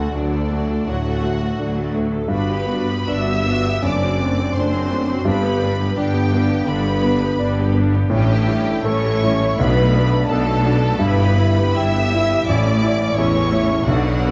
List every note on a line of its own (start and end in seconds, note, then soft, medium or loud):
0.00 0.84 D2 soft
0.00 0.46 D3 medium
0.00 0.14 A3 soft
0.00 0.36 A3 soft
0.00 2.27 A3 soft
0.00 0.12 F#4 soft
0.00 3.80 F#4 soft
0.00 0.14 A4 soft
0.00 0.13 F#5 medium
0.12 0.78 D2 soft
0.12 0.31 F#3 soft
0.12 0.87 D4 soft
0.12 0.73 D4 soft
0.12 0.31 F#4 soft
0.12 0.86 D5 medium
0.33 0.51 A3 soft
0.33 0.51 A4 soft
0.50 0.69 F#3 soft
0.50 1.08 A3 soft
0.50 0.69 F#4 soft
0.71 0.88 A3 soft
0.71 0.88 A4 soft
0.86 1.50 D2 soft
0.86 1.44 A2 soft
0.86 1.04 F#3 soft
0.86 1.94 F#4 medium
0.86 1.04 F#4 soft
0.86 1.95 F#5 medium
1.08 1.24 A3 soft
1.08 1.24 A4 soft
1.21 1.79 A3 soft
1.21 1.42 F#4 soft
1.26 1.42 F#3 soft
1.43 1.60 A3 soft
1.43 1.60 A4 soft
1.58 2.22 D2 medium
1.58 2.22 D2 soft
1.58 2.23 D2 medium
1.58 1.76 F#3 soft
1.58 2.17 D4 soft
1.58 1.76 F#4 soft
1.78 1.95 A3 soft
1.78 1.95 A4 soft
1.94 2.13 F#3 soft
1.94 2.31 A3 soft
1.94 2.13 F#4 soft
2.13 2.31 A3 soft
2.13 2.31 A4 soft
2.28 3.00 G1 medium
2.28 3.01 G1 medium
2.28 3.79 G2 medium
2.28 3.01 G2 medium
2.28 3.83 B3 soft
2.28 2.49 D4 soft
2.28 2.49 F#4 soft
2.28 3.05 B4 medium
2.28 3.06 B5 medium
2.51 2.71 B3 soft
2.51 2.71 G4 soft
2.66 3.31 B3 soft
2.71 2.91 D4 soft
2.71 2.91 F#4 soft
2.91 3.10 B3 soft
2.91 3.10 G4 soft
3.08 3.75 G1 medium
3.08 3.76 G1 medium
3.08 3.75 G2 medium
3.08 3.68 D4 soft
3.08 3.28 D4 soft
3.08 3.28 F#4 soft
3.08 3.83 E5 medium
3.08 3.84 E6 medium
3.30 3.48 B3 soft
3.30 3.48 G4 soft
3.45 3.83 B3 soft
3.45 3.66 D4 soft
3.45 3.66 F#4 soft
3.66 3.84 B3 soft
3.66 3.84 G4 soft
3.82 4.48 F#1 medium
3.82 5.22 F#2 medium
3.82 4.47 F#2 medium
3.82 4.01 A3 soft
3.82 5.26 C4 medium
3.82 8.86 D4 medium
3.82 4.01 D4 soft
3.82 4.56 D5 medium
3.82 4.56 D6 medium
4.02 4.20 C4 soft
4.02 4.20 F#4 soft
4.19 4.38 A3 soft
4.19 4.78 C4 soft
4.19 4.38 D4 soft
4.37 4.56 C4 soft
4.37 4.56 F#4 soft
4.55 5.09 F#1 medium
4.55 5.18 F#1 medium
4.55 5.18 F#2 medium
4.55 4.72 A3 soft
4.55 4.72 D4 soft
4.55 5.14 D4 medium
4.55 5.27 C5 medium
4.55 5.27 C6 medium
4.73 4.91 C4 soft
4.73 4.91 F#4 soft
4.90 5.09 A3 soft
4.90 5.26 C4 soft
4.90 5.09 D4 soft
5.08 5.26 C4 soft
5.08 5.27 F#4 soft
5.24 5.88 G1 medium
5.24 5.89 G1 medium
5.24 6.63 G2 medium
5.24 5.90 G2 medium
5.24 5.43 G3 medium
5.24 7.93 B3 medium
5.24 5.43 D4 medium
5.24 5.96 B4 medium
5.24 5.96 B5 medium
5.43 5.62 B3 soft
5.43 5.62 G4 medium
5.62 5.80 G3 soft
5.62 6.19 B3 soft
5.62 5.80 D4 soft
5.80 5.98 B3 soft
5.80 5.98 G4 soft
5.97 6.59 G1 medium
5.97 6.60 G2 medium
5.97 6.14 G3 soft
5.97 6.14 D4 soft
5.97 6.54 D4 medium
5.97 6.68 G4 medium
5.97 6.67 G5 medium
6.13 6.32 B3 soft
6.13 6.32 G4 soft
6.32 6.50 G3 soft
6.32 6.89 B3 medium
6.32 6.50 D4 soft
6.50 6.68 B3 soft
6.50 6.67 G4 soft
6.66 7.30 G1 medium
6.66 7.30 G2 medium
6.66 7.24 D3 medium
6.66 6.84 G3 soft
6.66 6.84 D4 medium
6.66 7.75 B4 medium
6.66 7.75 B5 medium
6.86 7.03 B3 soft
6.86 7.03 G4 soft
7.03 7.21 G3 soft
7.03 7.60 B3 medium
7.03 7.21 D4 medium
7.22 7.39 B3 soft
7.22 7.39 G4 soft
7.37 8.02 G1 medium
7.37 8.03 G1 medium
7.37 8.03 G2 medium
7.37 7.57 G3 medium
7.37 7.97 D4 medium
7.41 7.57 D4 medium
7.60 7.77 B3 soft
7.60 7.77 G4 medium
7.73 8.10 B3 soft
7.77 7.94 G3 medium
7.77 7.94 D4 medium
7.94 8.12 B3 soft
7.94 8.12 G4 soft
8.10 8.77 A1 medium
8.10 9.55 A2 medium
8.10 8.77 A2 medium
8.10 8.29 G3 medium
8.10 10.97 A3 medium
8.10 8.29 C#4 medium
8.10 8.82 G4 medium
8.10 8.82 G5 medium
8.32 8.50 A3 medium
8.32 8.50 E4 medium
8.47 8.68 G3 soft
8.47 8.68 C#4 soft
8.47 9.08 E4 medium
8.69 8.87 A3 soft
8.69 8.87 E4 medium
8.84 9.50 A1 medium
8.84 9.51 A1 medium
8.84 9.50 A2 medium
8.84 9.60 C#4 medium
8.84 9.44 A4 medium
8.84 9.59 C#5 medium
8.84 9.59 C#6 medium
8.89 9.05 G3 medium
8.89 9.05 C#4 medium
9.06 9.24 A3 soft
9.06 9.24 E4 soft
9.23 9.43 G3 medium
9.23 9.42 C#4 soft
9.23 9.59 E4 medium
9.43 9.60 A3 soft
9.43 9.60 E4 soft
9.57 10.20 B1 medium
9.57 10.21 B1 medium
9.57 10.97 B1 medium
9.57 10.21 B2 medium
9.57 10.99 D4 medium
9.57 10.28 B4 medium
9.57 10.29 B5 medium
9.62 9.77 B3 medium
9.62 9.77 D4 medium
9.78 9.96 A3 medium
9.78 9.95 B3 soft
9.95 10.13 B3 soft
9.95 10.51 D4 medium
9.95 10.14 D4 soft
10.14 10.31 A3 medium
10.14 10.30 B3 soft
10.28 10.92 B1 medium
10.28 10.92 B2 medium
10.28 10.46 B3 soft
10.28 10.47 D4 medium
10.28 11.00 A4 medium
10.28 10.88 A4 medium
10.28 11.01 A5 medium
10.47 10.65 A3 medium
10.47 10.64 B3 soft
10.64 10.82 B3 medium
10.64 11.01 D4 medium
10.64 10.84 D4 medium
10.84 11.02 A3 soft
10.84 11.02 B3 soft
10.99 11.68 G1 medium
10.99 12.44 G2 medium
10.99 11.68 G2 medium
10.99 12.45 G3 medium
10.99 11.18 G3 medium
10.99 13.87 E4 medium
10.99 11.18 E4 medium
10.99 11.78 B4 medium
10.99 11.77 B5 medium
11.19 11.39 B3 medium
11.19 11.39 G4 medium
11.37 11.58 G3 soft
11.37 11.58 E4 medium
11.37 12.00 E4 soft
11.58 11.78 B3 soft
11.58 11.78 G4 soft
11.76 12.40 G1 medium
11.76 12.40 G2 medium
11.76 11.95 G3 medium
11.76 11.95 E4 medium
11.76 12.34 G4 medium
11.76 12.49 E5 medium
11.76 12.48 E6 loud
11.95 12.14 B3 soft
11.95 12.14 G4 soft
12.13 12.31 G3 soft
12.13 12.31 E4 medium
12.13 12.49 E4 medium
12.30 12.48 B3 medium
12.30 12.48 G4 soft
12.46 12.99 A1 medium
12.46 13.08 A1 medium
12.46 13.84 A1 medium
12.46 13.08 A2 medium
12.46 13.87 E3 medium
12.46 12.63 C#4 medium
12.46 12.63 E4 medium
12.46 13.17 D5 medium
12.46 13.14 D6 medium
12.64 12.82 A3 soft
12.64 12.79 C#4 soft
12.81 12.97 C#4 soft
12.81 12.99 E4 soft
12.81 13.38 E4 medium
12.98 13.16 A3 soft
12.98 13.16 C#4 soft
13.15 13.79 A1 medium
13.15 13.74 E2 medium
13.15 13.79 A2 medium
13.15 13.33 C#4 medium
13.15 13.33 E4 medium
13.15 13.87 C#5 medium
13.15 13.87 C#6 medium
13.34 13.52 A3 soft
13.34 13.51 C#4 soft
13.52 13.68 C#4 soft
13.52 13.70 E4 soft
13.52 13.89 E4 medium
13.69 13.87 A3 soft
13.69 13.88 C#4 soft
13.85 14.31 B1 medium
13.85 14.31 B2 medium
13.85 14.05 D3 medium
13.85 14.31 F#3 medium
13.85 14.31 D4 medium
13.85 14.05 D4 medium
13.85 14.31 F#4 medium
13.85 14.31 F#5 medium
14.06 14.26 F#3 medium
14.06 14.25 B3 soft
14.25 14.31 D3 soft
14.25 14.31 B3 soft
14.25 14.31 D4 soft